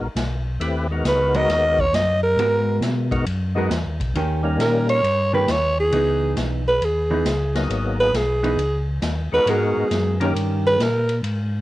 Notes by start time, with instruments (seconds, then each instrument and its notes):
0.01 tonewheel organ A#1
0.15 tonewheel organ B1, snare, hi-hat pedal, ride
0.60 tonewheel organ D#2 A3 C4 E4 G4 B4, ride
0.91 tonewheel organ G#3 B3 D#4 F#4 A#4
1.04 tonewheel organ C#2, alto saxophone B4, snare, hi-hat pedal, ride
1.34 hollow-body jazz guitar G#3 B3 F#4 A#4, alto saxophone D#5, ride
1.48 tonewheel organ D#2, snare, ride
1.79 alto saxophone C#5, kick
1.92 tonewheel organ F#2, alto saxophone D#5, snare, hi-hat pedal, ride
2.23 alto saxophone A#4
2.36 tonewheel organ G#2, hollow-body jazz guitar G#3 B3 F#4 A#4, ride
2.81 tonewheel organ B2, snare, hi-hat pedal, ride
3.11 tonewheel organ G#3 B3 D#4 F#4 A#4, kick, ride
3.26 tonewheel organ F#2, ride
3.55 tonewheel organ G#3 B3 D#4 F#4 G#4, hollow-body jazz guitar G#3 B3 F#4 A#4
3.70 tonewheel organ E2, snare, hi-hat pedal, ride
3.86 tonewheel organ D#2
4.00 tonewheel organ B1, kick, ride
4.14 tonewheel organ D#2, hollow-body jazz guitar D#3 A#3 C#4 G4, ride
4.43 tonewheel organ G3 A#3 C#4 D#4 A#4
4.58 tonewheel organ A#2, alto saxophone A#4, snare, hi-hat pedal, ride
4.89 alto saxophone C#5, ride
5.03 tonewheel organ G2, ride
5.33 hollow-body jazz guitar D#3 A#3 C#4 G4, alto saxophone B4
5.48 tonewheel organ D#2, alto saxophone C#5, snare, hi-hat pedal, ride
5.80 alto saxophone G#4
5.92 tonewheel organ C#2, hollow-body jazz guitar E3 B3 D#4, ride
6.36 tonewheel organ B1, snare, hi-hat pedal, ride
6.68 alto saxophone B4
6.81 tonewheel organ D#2, alto saxophone G#4, ride
7.11 hollow-body jazz guitar E3 B3 D#4
7.25 tonewheel organ C#2, snare, hi-hat pedal, ride
7.55 tonewheel organ F#3 A#3 B3 D#4 G#4, snare, ride
7.69 tonewheel organ G#1, ride
8.00 alto saxophone B4
8.13 tonewheel organ B1, alto saxophone G#4, snare, hi-hat pedal, ride
8.43 hollow-body jazz guitar E3 B3 D#4, ride
8.57 tonewheel organ C#2, ride
9.02 tonewheel organ D#2, snare, hi-hat pedal, ride
9.32 tonewheel organ D#2 G#3 B3 D#4 F#4 A#4, alto saxophone B4
9.46 tonewheel organ G#2, hollow-body jazz guitar G#3 B3 F#4, alto saxophone G#4, ride
9.50 hollow-body jazz guitar A#4
9.77 tonewheel organ G#2
9.90 tonewheel organ F#2, snare, hi-hat pedal, ride
10.20 hollow-body jazz guitar D#3 C#4 G4 A#4, tonewheel organ A#3 C#4 D#4 G4 A#4, ride
10.34 tonewheel organ G2, ride
10.66 alto saxophone B4
10.78 tonewheel organ A#2, snare, hi-hat pedal, ride
10.82 alto saxophone A#4
11.09 ride
11.23 tonewheel organ G#2, ride